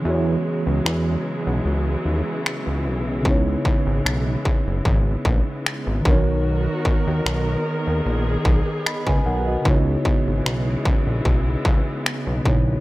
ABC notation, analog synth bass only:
X:1
M:4/4
L:1/16
Q:"Swing 16ths" 1/4=75
K:C#dor
V:1 name="Analog synth bass" clef=bass
E,,2 z C,, E,,2 z B,,, C,,2 D,, z2 C,, B,,,2 | C,,2 z G,,, B,,,2 z F,,, G,,,2 A,,, z2 G,,, B,,,2- | B,,,2 z D,, B,,,2 z D,, A,,,2 B,,, z2 C,, B,,,2 | C,,2 z G,,, B,,,2 z A,,, B,,,2 C,, z2 B,,, A,,,2 |]